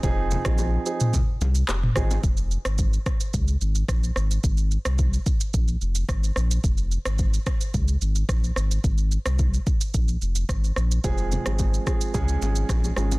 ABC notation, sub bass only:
X:1
M:4/4
L:1/16
Q:1/4=109
K:Fm
V:1 name="Sub bass" clef=bass
F,,,3 B,,,3 z4 C,,2 F,,,2 A,,,2 | F,,,3 A,,,3 z2 D,,2 A,,,2 B,,,2 A,,,2 | A,,,3 C,,3 z2 B,,,2 F,,,2 A,,,2 B,,,2 | F,,,3 A,,,3 z2 D,,2 A,,,2 B,,,2 A,,,2 |
A,,,3 C,,3 z2 B,,,2 F,,,2 A,,,2 B,,,2 | F,,,3 A,,,3 z2 D,,2 A,,,2 B,,,2 A,,,2 |]